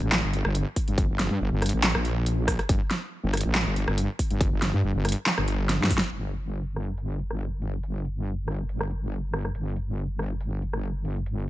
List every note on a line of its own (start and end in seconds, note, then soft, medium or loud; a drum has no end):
0.02 0.22 A1 medium
0.12 snare loud
0.12 clap medium
0.12 closed hi-hat medium
0.23 0.43 G1 loud
0.33 closed hi-hat medium
0.45 0.64 G1 loud
0.45 cross-stick medium
0.55 closed hi-hat medium
0.76 kick medium
0.76 open hi-hat medium
0.88 1.07 G1 loud
0.88 closed hi-hat soft
0.98 kick loud
0.98 closed hi-hat medium
1.09 1.29 G1 loud
1.19 snare medium
1.19 closed hi-hat medium
1.31 1.39 G2 medium
1.41 1.50 G1 loud
1.52 1.72 G1 loud
1.62 cross-stick medium
1.62 closed hi-hat medium
1.66 closed hi-hat medium
1.69 closed hi-hat medium
1.73 1.93 A1 loud
1.84 snare loud
1.84 clap medium
1.84 closed hi-hat medium
1.95 2.57 A#1 loud
1.95 cross-stick medium
2.05 closed hi-hat medium
2.26 closed hi-hat medium
2.48 kick medium
2.48 cross-stick medium
2.48 open hi-hat loud
2.59 cross-stick medium
2.59 closed hi-hat soft
2.69 2.79 G1 loud
2.69 kick loud
2.69 closed hi-hat medium
2.91 snare medium
2.91 closed hi-hat medium
3.23 3.43 G1 loud
3.33 cross-stick medium
3.33 closed hi-hat medium
3.37 closed hi-hat medium
3.41 closed hi-hat medium
3.45 3.64 A1 loud
3.55 snare loud
3.55 clap medium
3.55 closed hi-hat medium
3.66 3.86 G1 loud
3.76 closed hi-hat medium
3.88 4.07 G1 loud
3.88 cross-stick medium
3.98 closed hi-hat medium
4.19 kick medium
4.19 open hi-hat loud
4.31 4.50 G1 medium
4.31 closed hi-hat soft
4.41 kick loud
4.41 closed hi-hat medium
4.52 4.72 G1 loud
4.62 snare medium
4.62 closed hi-hat medium
4.73 4.82 G2 medium
4.84 4.93 G1 medium
4.95 5.14 G1 medium
5.05 cross-stick medium
5.05 closed hi-hat medium
5.09 closed hi-hat medium
5.12 closed hi-hat medium
5.26 snare loud
5.26 clap medium
5.26 closed hi-hat medium
5.38 5.79 G1 loud
5.38 cross-stick medium
5.48 closed hi-hat medium
5.69 snare medium
5.69 closed hi-hat medium
5.80 6.00 G2 loud
5.80 snare medium
5.91 kick medium
5.91 open hi-hat loud
5.98 snare loud
6.02 closed hi-hat soft
6.12 9.53 G1 medium
6.12 closed hi-hat medium
6.12 crash medium
6.33 closed hi-hat soft
6.76 cross-stick soft
6.76 closed hi-hat soft
6.80 closed hi-hat medium
6.84 closed hi-hat medium
6.98 closed hi-hat medium
7.19 closed hi-hat soft
7.31 cross-stick medium
7.41 closed hi-hat medium
7.62 closed hi-hat soft
7.73 closed hi-hat soft
7.83 closed hi-hat medium
8.05 closed hi-hat soft
8.48 cross-stick soft
8.48 closed hi-hat soft
8.52 closed hi-hat medium
8.55 closed hi-hat medium
8.69 closed hi-hat medium
8.81 cross-stick medium
8.91 closed hi-hat soft
9.12 closed hi-hat medium
9.33 cross-stick medium
9.33 closed hi-hat soft
9.45 cross-stick soft
9.45 closed hi-hat soft
9.55 11.50 G1 medium
9.55 closed hi-hat medium
9.76 closed hi-hat soft
10.19 cross-stick soft
10.19 closed hi-hat soft
10.23 closed hi-hat medium
10.26 closed hi-hat medium
10.41 closed hi-hat medium
10.62 closed hi-hat soft
10.73 cross-stick medium
10.83 closed hi-hat medium
11.05 closed hi-hat soft
11.16 closed hi-hat soft
11.26 closed hi-hat medium